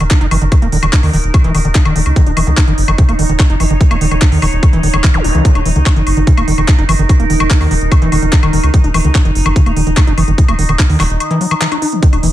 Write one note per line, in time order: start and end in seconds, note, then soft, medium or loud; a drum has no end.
0.00 0.07 D#1 medium
0.00 0.04 D#3 medium
0.00 12.01 D#4 medium
0.00 2.18 A#4 medium
0.00 closed hi-hat soft
0.00 high woodblock soft
0.11 0.19 D#4 medium
0.11 kick loud
0.11 clap loud
0.11 closed hi-hat medium
0.21 0.27 F#1 medium
0.21 0.26 D#4 loud
0.21 closed hi-hat soft
0.31 0.37 F#1 loud
0.31 0.37 E3 medium
0.31 open hi-hat loud
0.31 high woodblock medium
0.42 0.48 F#1 medium
0.42 0.45 D#3 medium
0.42 closed hi-hat soft
0.52 0.55 E3 medium
0.52 kick loud
0.52 closed hi-hat medium
0.52 high woodblock soft
0.62 0.68 D#1 medium
0.62 0.68 A#3 medium
0.62 closed hi-hat soft
0.72 0.78 D#1 loud
0.72 0.78 D#3 medium
0.72 open hi-hat loud
0.83 0.89 D#1 medium
0.83 0.86 D#3 medium
0.83 closed hi-hat soft
0.83 high woodblock medium
0.93 1.01 D#4 medium
0.93 kick loud
0.93 clap loud
0.93 closed hi-hat loud
1.03 1.09 D#2 medium
1.03 1.11 D#3 loud
1.03 open hi-hat medium
1.03 high woodblock soft
1.13 1.20 D#1 loud
1.13 1.17 D#3 loud
1.13 open hi-hat loud
1.24 1.30 D#1 medium
1.24 closed hi-hat soft
1.34 kick loud
1.34 closed hi-hat medium
1.34 high woodblock medium
1.44 1.50 D#1 medium
1.44 1.52 E3 loud
1.44 closed hi-hat soft
1.55 1.61 D#1 loud
1.55 1.60 D#3 medium
1.55 open hi-hat loud
1.55 high woodblock soft
1.65 1.71 D#1 medium
1.65 1.68 D#3 medium
1.65 closed hi-hat soft
1.75 1.83 D#4 medium
1.75 kick loud
1.75 clap loud
1.75 closed hi-hat medium
1.85 1.91 D#1 medium
1.85 1.94 D#3 loud
1.85 closed hi-hat soft
1.85 high woodblock medium
1.96 2.02 D#1 loud
1.96 2.01 D#3 medium
1.96 open hi-hat loud
2.06 2.12 C#2 medium
2.06 closed hi-hat soft
2.06 high woodblock soft
2.16 2.22 D#3 loud
2.16 5.47 C#5 medium
2.16 kick loud
2.16 closed hi-hat medium
2.26 2.33 D#1 medium
2.26 2.32 D#4 medium
2.26 closed hi-hat soft
2.37 2.43 D#1 loud
2.37 2.42 E3 medium
2.37 open hi-hat loud
2.37 high woodblock medium
2.47 2.53 C#2 medium
2.47 2.50 D#3 medium
2.47 closed hi-hat soft
2.57 2.65 D#4 medium
2.57 kick loud
2.57 clap loud
2.57 closed hi-hat loud
2.57 high woodblock soft
2.68 2.74 F#1 medium
2.68 2.73 D#3 medium
2.68 closed hi-hat soft
2.78 2.84 F#1 loud
2.78 open hi-hat loud
2.88 2.94 F#1 medium
2.88 2.91 D#3 medium
2.88 closed hi-hat soft
2.88 high woodblock medium
2.98 3.04 C#3 loud
2.98 kick loud
2.98 closed hi-hat medium
3.09 3.15 D#1 medium
3.09 3.14 A#3 medium
3.09 closed hi-hat soft
3.09 high woodblock soft
3.19 3.25 D#1 loud
3.19 3.24 D#3 medium
3.19 open hi-hat loud
3.29 3.35 D#1 loud
3.29 3.33 D#3 medium
3.29 closed hi-hat soft
3.39 3.48 D#4 medium
3.39 kick loud
3.39 clap loud
3.39 closed hi-hat medium
3.39 high woodblock medium
3.50 3.56 F#1 medium
3.50 3.55 D#4 loud
3.50 closed hi-hat soft
3.60 3.66 F#1 loud
3.60 3.66 E3 medium
3.60 open hi-hat loud
3.60 high woodblock soft
3.70 3.76 F#1 loud
3.70 3.74 D#3 medium
3.70 closed hi-hat soft
3.81 3.84 E3 medium
3.81 kick loud
3.81 closed hi-hat medium
3.91 3.97 D#1 medium
3.91 3.96 A#3 medium
3.91 closed hi-hat soft
3.91 high woodblock medium
4.01 4.07 D#1 loud
4.01 4.07 D#3 medium
4.01 open hi-hat loud
4.11 4.18 D#1 medium
4.11 4.15 D#3 medium
4.11 closed hi-hat soft
4.11 high woodblock soft
4.22 4.30 D#4 medium
4.22 kick loud
4.22 clap loud
4.22 closed hi-hat medium
4.32 4.38 D#2 medium
4.32 4.40 D#3 loud
4.32 open hi-hat medium
4.42 4.48 D#1 loud
4.42 4.46 D#3 loud
4.42 open hi-hat loud
4.42 high woodblock medium
4.53 4.59 D#1 medium
4.53 closed hi-hat soft
4.63 kick loud
4.63 closed hi-hat medium
4.63 high woodblock soft
4.73 4.79 D#1 medium
4.73 4.81 E3 loud
4.73 closed hi-hat soft
4.83 4.89 D#1 loud
4.83 4.89 D#3 medium
4.83 open hi-hat loud
4.94 5.00 D#1 medium
4.94 4.97 D#3 medium
4.94 closed hi-hat soft
4.94 high woodblock medium
5.04 5.09 E3 medium
5.04 kick loud
5.04 clap loud
5.04 closed hi-hat medium
5.14 5.20 D#1 medium
5.14 5.20 E3 medium
5.14 closed hi-hat soft
5.14 zap medium
5.14 high woodblock soft
5.24 5.31 D#1 loud
5.24 5.28 D#4 medium
5.24 open hi-hat loud
5.35 5.41 C#2 medium
5.35 5.43 E3 medium
5.35 closed hi-hat soft
5.45 5.50 D#3 loud
5.45 8.76 A#4 medium
5.45 kick loud
5.45 closed hi-hat medium
5.55 5.61 D#1 medium
5.55 5.61 D#4 medium
5.55 closed hi-hat soft
5.55 high woodblock soft
5.66 5.72 D#1 loud
5.66 5.71 E3 medium
5.66 open hi-hat loud
5.76 5.82 C#2 medium
5.76 5.79 D#3 medium
5.76 closed hi-hat soft
5.86 5.94 D#4 medium
5.86 kick loud
5.86 clap loud
5.86 closed hi-hat medium
5.86 high woodblock medium
5.96 6.02 F#1 medium
5.96 6.02 D#3 medium
5.96 closed hi-hat soft
6.07 6.13 F#1 loud
6.07 open hi-hat loud
6.07 high woodblock soft
6.17 6.23 F#1 medium
6.17 6.20 D#3 medium
6.17 closed hi-hat soft
6.27 6.33 C#3 loud
6.27 kick loud
6.27 closed hi-hat medium
6.37 6.44 D#1 medium
6.37 6.43 A#3 medium
6.37 closed hi-hat soft
6.37 high woodblock medium
6.48 6.54 D#1 loud
6.48 6.53 D#3 medium
6.48 open hi-hat loud
6.58 6.64 D#1 loud
6.58 6.61 D#3 medium
6.58 closed hi-hat soft
6.58 high woodblock soft
6.68 6.76 D#4 medium
6.68 kick loud
6.68 clap loud
6.68 closed hi-hat medium
6.79 6.85 F#1 medium
6.79 6.84 D#4 loud
6.79 closed hi-hat soft
6.89 6.95 F#1 medium
6.89 6.94 E3 medium
6.89 open hi-hat loud
6.89 high woodblock medium
6.99 7.05 F#1 loud
6.99 7.02 D#3 medium
6.99 closed hi-hat soft
7.09 7.13 E3 medium
7.09 kick loud
7.09 closed hi-hat medium
7.09 high woodblock soft
7.20 7.26 D#1 medium
7.20 7.25 A#3 medium
7.20 closed hi-hat soft
7.30 7.36 D#1 loud
7.30 7.35 D#3 medium
7.30 open hi-hat loud
7.40 7.46 D#1 medium
7.40 7.43 D#3 medium
7.40 high woodblock medium
7.50 7.59 D#4 medium
7.50 kick loud
7.50 clap loud
7.50 closed hi-hat loud
7.61 7.67 D#2 medium
7.61 7.69 D#3 loud
7.61 open hi-hat medium
7.61 high woodblock soft
7.71 7.77 D#1 loud
7.71 7.74 D#3 loud
7.71 open hi-hat loud
7.81 7.87 D#1 medium
7.81 closed hi-hat soft
7.92 kick loud
7.92 closed hi-hat medium
7.92 high woodblock medium
8.02 8.08 D#1 medium
8.02 8.10 E3 loud
8.02 closed hi-hat soft
8.12 8.18 D#1 loud
8.12 8.18 D#3 medium
8.12 open hi-hat loud
8.12 high woodblock soft
8.22 8.28 D#1 medium
8.22 8.26 D#3 medium
8.22 closed hi-hat soft
8.33 8.41 D#4 medium
8.33 kick loud
8.33 clap loud
8.33 closed hi-hat medium
8.43 8.49 D#1 medium
8.43 8.51 D#3 loud
8.43 closed hi-hat soft
8.43 high woodblock medium
8.53 8.59 D#1 loud
8.53 8.59 D#3 medium
8.53 open hi-hat loud
8.63 8.70 C#2 loud
8.63 closed hi-hat soft
8.63 high woodblock soft
8.74 8.79 D#3 loud
8.74 12.05 D#5 medium
8.74 kick loud
8.74 closed hi-hat medium
8.84 8.90 D#1 medium
8.84 8.89 D#4 medium
8.84 closed hi-hat soft
8.94 9.00 D#1 loud
8.94 9.00 E3 medium
8.94 open hi-hat loud
8.94 high woodblock medium
9.05 9.11 C#2 medium
9.05 9.08 D#3 medium
9.05 closed hi-hat soft
9.15 9.23 D#4 medium
9.15 kick loud
9.15 clap loud
9.15 closed hi-hat loud
9.15 high woodblock soft
9.25 9.31 F#1 medium
9.25 9.31 D#3 medium
9.25 closed hi-hat soft
9.35 9.41 F#1 medium
9.35 open hi-hat loud
9.46 9.52 F#1 medium
9.46 9.49 D#3 medium
9.46 high woodblock medium
9.56 9.61 C#3 loud
9.56 kick loud
9.56 closed hi-hat loud
9.66 9.72 D#1 medium
9.66 9.72 A#3 medium
9.66 closed hi-hat soft
9.66 high woodblock soft
9.76 9.83 D#1 loud
9.76 9.82 D#3 medium
9.76 open hi-hat loud
9.87 9.93 D#1 medium
9.87 9.90 D#3 medium
9.87 closed hi-hat soft
9.97 10.05 D#4 medium
9.97 kick loud
9.97 clap loud
9.97 closed hi-hat medium
9.97 high woodblock medium
10.07 10.13 F#1 medium
10.07 10.13 D#4 loud
10.07 closed hi-hat soft
10.18 10.24 F#1 medium
10.18 10.23 E3 medium
10.18 open hi-hat loud
10.18 high woodblock soft
10.28 10.34 F#1 medium
10.28 10.31 D#3 medium
10.28 closed hi-hat soft
10.38 10.41 E3 medium
10.38 kick loud
10.38 closed hi-hat loud
10.48 10.54 D#1 medium
10.48 10.54 A#3 medium
10.48 closed hi-hat soft
10.48 high woodblock medium
10.59 10.65 D#1 loud
10.59 10.64 D#3 medium
10.59 open hi-hat loud
10.69 10.75 D#1 medium
10.69 10.72 D#3 medium
10.69 closed hi-hat soft
10.69 high woodblock soft
10.79 10.87 D#4 medium
10.79 kick loud
10.79 clap loud
10.79 closed hi-hat loud
10.90 10.96 D#2 medium
10.90 10.98 D#3 loud
10.90 open hi-hat medium
11.00 11.06 D#1 loud
11.00 11.03 D#3 loud
11.00 clap medium
11.00 open hi-hat loud
11.00 high woodblock medium
11.10 11.16 D#1 medium
11.20 closed hi-hat loud
11.20 high woodblock soft
11.31 11.39 E3 loud
11.31 closed hi-hat soft
11.41 11.46 F#3 medium
11.41 open hi-hat loud
11.51 11.54 E3 medium
11.51 closed hi-hat soft
11.51 high woodblock medium
11.61 11.67 E3 medium
11.61 clap loud
11.61 closed hi-hat medium
11.72 11.77 D#4 medium
11.72 closed hi-hat soft
11.72 high woodblock soft
11.82 11.94 D#4 medium
11.82 open hi-hat loud
11.92 12.00 D#3 medium
11.92 closed hi-hat soft
12.03 12.08 D#3 loud
12.03 12.32 D#4 medium
12.03 12.32 A#4 medium
12.03 kick loud
12.03 closed hi-hat medium
12.13 12.19 D#1 medium
12.13 12.18 D#4 medium
12.13 closed hi-hat soft
12.13 high woodblock soft
12.23 12.29 D#1 loud
12.23 12.29 E3 medium
12.23 open hi-hat loud